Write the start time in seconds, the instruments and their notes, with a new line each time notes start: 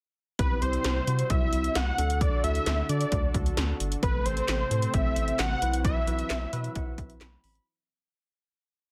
0.39 analog synth bass C2, analog synth pad C3 G3 C4 E4, tine electric piano C4 E4 G4, analog synth lead B4, kick, closed hi-hat
0.62 analog synth bass C2, tine electric piano C4 E4 G4, analog synth lead C5, closed hi-hat
0.73 closed hi-hat
0.84 analog synth bass C2, snare, closed hi-hat
1.07 analog synth bass C3, tine electric piano C4 E4 F#4, closed hi-hat
1.19 closed hi-hat
1.30 analog synth bass C2, analog synth lead E5, kick, closed hi-hat
1.53 analog synth bass C2, closed hi-hat
1.64 closed hi-hat
1.75 analog synth bass C2, analog synth lead F#5, snare, closed hi-hat
1.98 analog synth bass D2, analog synth pad D3 D4 F#4 A4, tine electric piano D4 F#4 A4, closed hi-hat
2.10 closed hi-hat
2.21 analog synth lead D5, kick, closed hi-hat
2.44 analog synth bass D2, tine electric piano D4 F#4 A4, analog synth lead E5, closed hi-hat
2.55 closed hi-hat
2.66 analog synth bass D2, snare, closed hi-hat
2.89 analog synth bass D3, tine electric piano D4 F#4 A4, analog synth lead D5, closed hi-hat
3.01 closed hi-hat
3.12 analog synth bass D2, kick, closed hi-hat
3.34 analog synth bass D2, kick, closed hi-hat
3.46 closed hi-hat
3.57 analog synth bass D2, snare, closed hi-hat
3.80 analog synth bass G1, closed hi-hat
3.92 closed hi-hat
4.03 analog synth bass A1, analog synth pad C3 A3 C4, tine electric piano C4 A4 B4, analog synth lead B4, kick, closed hi-hat
4.25 analog synth bass A1, tine electric piano C4 A4 C5, analog synth lead C5, closed hi-hat
4.37 closed hi-hat
4.48 analog synth bass A1, snare, clap, closed hi-hat
4.71 analog synth bass A2, tine electric piano C4 A4 C5, closed hi-hat
4.82 closed hi-hat
4.94 analog synth bass A1, analog synth lead E5, kick, closed hi-hat
5.16 analog synth bass A1, closed hi-hat
5.28 closed hi-hat
5.39 analog synth bass A1, analog synth lead F#5, snare, clap, closed hi-hat
5.62 analog synth bass B1, analog synth pad E3 F#3, tine electric piano E4 F#4 B4, closed hi-hat
5.74 closed hi-hat
5.85 analog synth lead E5, kick, closed hi-hat
6.07 analog synth bass B1, tine electric piano E4 F#4 B4, closed hi-hat
6.19 closed hi-hat
6.30 analog synth bass B1, snare, clap, closed hi-hat
6.53 analog synth bass B2, tine electric piano E4 F#4 B4 E5, closed hi-hat
6.64 closed hi-hat
6.75 analog synth bass B1, tine electric piano F#5, kick, closed hi-hat
6.98 analog synth bass B1, tine electric piano E5, kick, closed hi-hat
7.10 closed hi-hat
7.21 analog synth bass B1, tine electric piano B5, snare, clap, closed hi-hat
7.44 analog synth bass A1, tine electric piano B5, open hi-hat
7.55 closed hi-hat